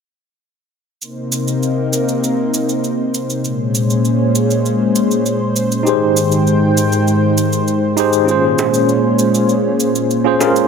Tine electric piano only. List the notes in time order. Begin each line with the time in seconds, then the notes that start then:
5.83 D#4 G4
5.87 G#4 C5
7.97 D#4 G4 G#4 C5
8.25 C#4 F4 G#4
8.31 C5
10.24 C#4 F4 G#4 C5
10.39 C#4 F4 G#4 A#4